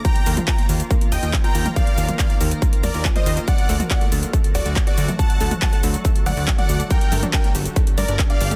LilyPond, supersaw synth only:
\new Staff \with { instrumentName = "Supersaw synth" } { \time 4/4 \key d \phrygian \tempo 4 = 140 <g'' bes''>8. r16 <g'' bes''>16 r4 r16 <ees'' g''>8 r16 <g'' bes''>8 r16 | <d'' f''>8. r16 <d'' f''>16 r4 r16 <bes' d''>8 r16 <c'' ees''>8 r16 | <d'' fis''>8. r16 <d'' fis''>16 r4 r16 <fis' d''>8 r16 <fis' d''>8 r16 | <fis'' a''>8. r16 <fis'' a''>16 r4 r16 <d'' fis''>8 r16 <d'' fis''>8 r16 |
<bes' g''>8. r16 <bes' g''>16 r4 r16 <bes' d''>8 r16 <d'' f''>8 r16 | }